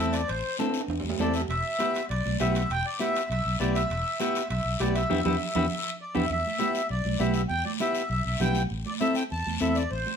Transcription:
Already playing: E5
0.00 E2 C4 E4 A4, high conga
0.12 D5, high timbale, short guiro
0.28 A1 C5, high conga, high timbale, long guiro
0.58 C4 E4 A4, high conga, high timbale, short guiro
0.69 high timbale
0.74 short guiro
0.81 high timbale
0.88 E2, high conga, high timbale, long guiro
1.00 E2, low timbale
1.05 high conga
1.10 low timbale
1.19 E2 C4 E4 A4 D5, high conga, low timbale, short guiro
1.33 E5, short guiro
1.40 low timbale
1.48 E1 E5, high conga, high timbale, long guiro
1.79 B3 E4 G4, high conga, high timbale, short guiro
1.95 high timbale, short guiro
2.09 B1 D5, high conga, high timbale, long guiro
2.26 B1, high conga
2.40 B1 B3 E4 G4 E5, high conga, high timbale, low timbale, short guiro
2.55 high timbale, short guiro
2.70 E1 G5, high conga, high timbale, long guiro
2.86 D5
2.99 B3 E4 G4 E5, high conga, high timbale, short guiro
3.16 high timbale, short guiro
3.30 B1 E5, high conga, high timbale, long guiro
3.45 B1
3.59 B1 B3 E4 G4 D5, high conga, high timbale, short guiro
3.75 E5, high timbale, short guiro
3.90 E1, high conga, high timbale, long guiro
4.20 B3 E4 G4, high conga, high timbale, short guiro
4.35 high timbale, short guiro
4.49 B1 E5, high conga, high timbale, long guiro
4.64 B1
4.79 B1 B3 E4 G4 D5, high conga, high timbale, low timbale, short guiro
4.95 E5, high timbale, short guiro
5.10 E2 B3 E4 G4, low conga, high timbale, long guiro
5.25 E2 B3 E4 G4, low conga, high timbale, long guiro
5.55 E2 B3 E4 G4, low conga, high timbale, long guiro
6.01 D5
6.15 E2 B3 E4 G4 E5, low conga, high timbale, long guiro
6.30 E2 E5, high conga, long guiro
6.46 high conga
6.59 B3 E4 G4, high conga, short guiro
6.75 short guiro
6.89 B1 D5, high conga, long guiro
7.05 B1, high conga
7.19 B1 B3 E4 G4 E5, high conga, short guiro
7.34 E5, short guiro
7.49 E2 G5, high conga, long guiro
7.65 D5, high conga
7.80 B3 E4 G4 E5, high conga, short guiro
7.95 short guiro
8.09 B1 E5, high conga, long guiro
8.25 B1 E5
8.40 B1 B3 E4 G4 G5, high conga, low conga, short guiro
8.55 short guiro
8.70 A1, high conga, long guiro
8.86 D5, high conga
9.00 C4 E4 A4 E5, high conga, short guiro
9.15 G5, short guiro
9.30 E2 A5, high conga, long guiro
9.46 E2, high conga
9.60 E2 C4 E4 A4 E5, high conga, short guiro
9.75 D5, short guiro
9.91 A1 C5, high conga, long guiro
10.06 high conga

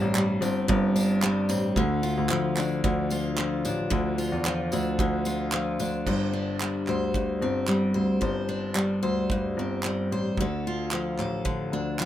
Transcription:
Already playing: G2 G3 C4 D4
0.01 A1
0.15 G3, clap
0.41 G1 C4, tambourine
0.68 G1 G2, kick
0.96 D4, tambourine
1.23 G3, clap
1.49 A1 C4, tambourine
1.76 D2 D3, kick
2.03 F4, tambourine
2.17 D2
2.29 D2 F3, clap
2.57 D4, clap, tambourine
2.84 D2 D3, kick
3.10 F4, tambourine
3.37 F3, clap
3.65 A1 D4, tambourine
3.90 D2 D3, kick
4.18 F4, tambourine
4.32 E2
4.45 F3, clap
4.72 D2 D4, tambourine
4.99 D2 D3, kick
5.25 F4, tambourine
5.52 F3, clap
5.79 D2 D4, tambourine
6.07 G1 G2 C5, kick, crash
6.33 D4
6.61 G3, clap
6.87 D2 C5, clap
7.14 G2, kick
7.42 G1 C4
7.68 G3, clap
7.94 D2 C5
8.21 G1 G2 C5, kick
8.49 D4
8.75 G3, clap
9.03 D2 C5
9.30 G2, kick
9.57 G1 C4
9.83 G3, clap
10.11 A1 C5
10.37 D2 D3 A4, kick
10.67 F4
10.91 F3, clap
11.18 A1 A4, clap
11.45 D3, kick
11.72 D2 D4
11.99 F3, clap

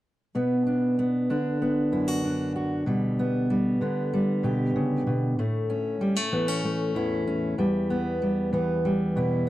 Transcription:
0.35 B2 B3
0.67 D4
0.99 B3
1.30 D3 D4
1.62 B3
1.92 F#2 E4
2.08 F#4
2.24 D4
2.56 F#4
2.86 B2 G3
3.19 B3
3.50 G3
3.81 D3 B3
4.13 G3
4.43 B2 G4
4.76 C#3
5.07 B2
5.39 A2 A3
5.70 C#4
6.01 G3
6.16 A3
6.32 E3 B3
6.48 C#4
6.64 A3
6.95 E2 E4
7.27 C#4
7.58 E2 G3
7.90 B3
8.22 G3
8.53 E3 B3
8.85 G3
9.16 B2 E4

